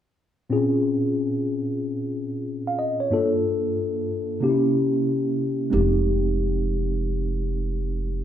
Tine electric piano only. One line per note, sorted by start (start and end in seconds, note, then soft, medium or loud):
0.50 3.07 A#2 medium
0.50 3.07 C4 medium
0.50 3.08 C#4 medium
0.50 3.09 F4 medium
0.50 3.09 G#4 medium
2.67 2.78 F5 medium
2.79 2.99 D#5 medium
3.00 3.31 C#5 medium
3.10 4.39 G2 medium
3.10 4.39 A#3 medium
3.10 4.40 D4 medium
3.10 4.40 F4 medium
3.10 4.41 A4 medium
4.40 5.69 C3 medium
4.40 5.70 A#3 medium
4.40 5.70 C#4 medium
4.40 4.51 D#4 soft
4.40 5.71 G4 medium
4.49 5.74 E4 medium
5.70 8.24 G#3 medium
5.70 8.24 C4 medium
5.70 8.24 D#4 medium
5.70 8.24 G4 medium